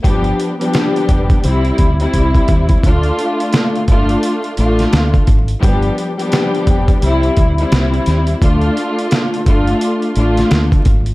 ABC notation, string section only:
X:1
M:4/4
L:1/16
Q:"Swing 16ths" 1/4=86
K:Ddor
V:1 name="String section"
[F,G,B,DG]3 [F,G,B,DG]4- [F,G,B,DG] [G,CE]3 [G,CE]4- [G,CE] | [A,DF]6 [A,DF]4 [A,DF]4 z2 | [F,G,B,DG]3 [F,G,B,DG]4- [F,G,B,DG] [G,CE]3 [G,CE]4- [G,CE] | [A,DF]6 [A,DF]4 [A,DF]4 z2 |]